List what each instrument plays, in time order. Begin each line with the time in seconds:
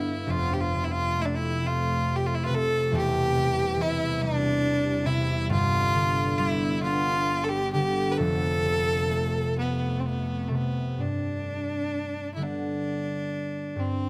Already playing: ambient pad G2 D3 B3, harp G2 B3 D4 G4 D5 F5, fiddle E4
0.27 harp F1 F2, ambient pad F2 C3 A3, fiddle F4
0.54 fiddle G4
0.61 fiddle F4
0.74 harp C3
0.84 fiddle E4
0.92 fiddle F4
1.19 harp A3, fiddle E4
1.25 fiddle D4
1.35 fiddle E4
1.64 harp C4, fiddle F4
2.16 fiddle G4
2.26 fiddle F4
2.35 fiddle E4
2.44 fiddle F4 B4
2.49 harp C3
2.55 fiddle A4
2.91 harp E1 E2, ambient pad E2 G3
2.97 fiddle G4
3.36 harp C3
3.77 harp E3
3.81 fiddle E4
4.21 harp G3, fiddle D4
5.05 harp C3, fiddle E4
5.49 harp G1 G2, ambient pad G2 D3 B3, fiddle F4
5.95 harp D3
6.38 harp G3, fiddle E4
6.83 harp B3, fiddle F4
7.44 fiddle A4
7.49 fiddle G4
7.73 harp D3, fiddle G4
8.11 fiddle B4
8.17 harp F1 F2, ambient pad F2 C3 A3, fiddle A4
8.65 harp C3
9.10 harp A3
9.59 fiddle B3
10.00 fiddle C4
10.05 fiddle B3
10.48 harp C3, fiddle A3
10.54 fiddle B3
10.98 harp G2, fiddle D4
12.34 harp D3, fiddle E4
12.38 harp G3 B3
12.43 fiddle D4
13.76 harp G2, fiddle C4